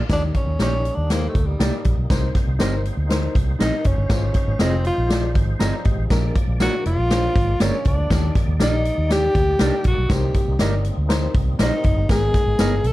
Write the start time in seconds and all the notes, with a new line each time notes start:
0.09 D#2 D#3 G3 A#3 D4 D#4 G4 D5, kick, snare, closed hi-hat, tambourine
0.34 C#4, kick, closed hi-hat
0.47 D#2
0.59 A#1 A#3 C#4 D#4 G4 D5, snare, closed hi-hat, tambourine
0.85 closed hi-hat
0.95 D#2 D4
1.09 A#3 D#4 G4 C5, snare, closed hi-hat, tambourine
1.28 A3
1.35 D2, kick, closed hi-hat
1.46 G3
1.59 C2 A#3 D#4 G4 D5, snare, closed hi-hat, tambourine
1.84 A#1, kick, closed hi-hat
1.97 B1
2.10 C2 C3 D#4 A#4 C5, kick, snare, closed hi-hat, tambourine
2.35 kick, snare, closed hi-hat
2.47 C2
2.59 G1 C4 D#4 G4 A#4 C5 D#5, snare, closed hi-hat, tambourine
2.85 closed hi-hat
2.97 D2
3.09 D#4 A#4 C5, snare, closed hi-hat, tambourine
3.35 C2, kick, closed hi-hat
3.59 A#1 C4 D#4 G4 A#4 D#5, snare, closed hi-hat, tambourine
3.84 F#1 C#4, kick, closed hi-hat
3.98 G1
4.09 G#1 G#2 F3 G#3 D#4 F4 G#4 C5, kick, snare, closed hi-hat, tambourine
4.34 kick, snare, closed hi-hat
4.47 G#1
4.59 F1 C4 F4 G#4 D#5, snare, closed hi-hat, tambourine
4.85 F4, closed hi-hat
4.98 A#1
5.09 F4 G#4 D5, snare, closed hi-hat, tambourine
5.35 G#1, kick, closed hi-hat
5.59 G1 C4 F4 G#4 D5 D#5 A#5, snare, closed hi-hat, tambourine
5.85 G#1 G4 D#5, kick, closed hi-hat
5.98 A1
6.10 A#1 A#2 A#3 D4 G#4 A#4 D5, kick, snare, closed hi-hat, tambourine
6.35 kick, closed hi-hat
6.48 A#1
6.60 A#3 D4 F4 F#4 G#4 A#4 D5, snare, closed hi-hat, tambourine
6.85 F1 F4, closed hi-hat
6.98 A#1
7.10 D4 G#4 C5, snare, closed hi-hat, tambourine
7.36 G#1, kick, closed hi-hat
7.60 G1 A#3 C#4 D4 F4 G#4 A#4 D5, snare, closed hi-hat, tambourine
7.85 C#2 D4, kick, closed hi-hat
7.97 D2
8.10 D#2 D#3 G3 D#4 G4 D5, kick, snare, closed hi-hat, tambourine
8.35 kick, snare, closed hi-hat
8.48 D#2
8.59 A#1 D4 D#4 G4 A#4 D5, snare, closed hi-hat, tambourine
8.85 closed hi-hat
8.98 D#2
9.10 D#4 G4 D5, snare, closed hi-hat, tambourine
9.35 D2, kick, closed hi-hat
9.59 C2 D4 D#4 G4 A#4 D5, snare, closed hi-hat, tambourine
9.84 A#1 F#4, kick, closed hi-hat
9.98 B1
10.09 C2 C3 G3 C4 D#4 G4 A#4 C5, kick, snare, closed hi-hat, tambourine
10.34 kick, closed hi-hat
10.48 C2
10.59 G1 D#4 G4 A#4 D5 D#5, snare, closed hi-hat, tambourine
10.85 closed hi-hat
10.97 D2
11.09 D#4 A#4 C5, snare, closed hi-hat, tambourine
11.35 C2, kick, closed hi-hat
11.59 A#1 D#4 G4 A#4 C5 D#5, snare, closed hi-hat, tambourine
11.84 F#1, kick, closed hi-hat
11.96 G1
12.09 G#1 G#2 D#3 G#3 B3 G#4 A#4, kick, snare, closed hi-hat, tambourine
12.34 kick, snare, closed hi-hat
12.46 G#1
12.59 G1 B3 D#4 G#4 A#4 D#5, snare, closed hi-hat, tambourine
12.84 B1 A4, closed hi-hat